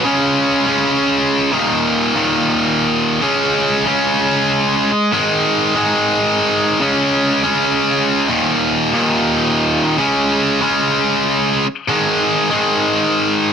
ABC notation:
X:1
M:4/4
L:1/8
Q:1/4=142
K:Db
V:1 name="Overdriven electric guitar" clef=bass
[D,A,D]3 [D,A,D]4 [E,,B,,E,]- | [E,,B,,E,]2 [E,,B,,E,]4- [E,,B,,E,] [D,A,D]- | [D,A,D]2 [D,A,D]4- [D,A,D] z | [A,,E,A,]3 [A,,E,A,]4- [A,,E,A,] |
[D,A,D]3 [D,A,D]4 [E,,B,,E,]- | [E,,B,,E,]2 [E,,B,,E,]4- [E,,B,,E,] [D,A,D]- | [D,A,D]2 [D,A,D]4- [D,A,D] z | [A,,E,A,]3 [A,,E,A,]4- [A,,E,A,] |]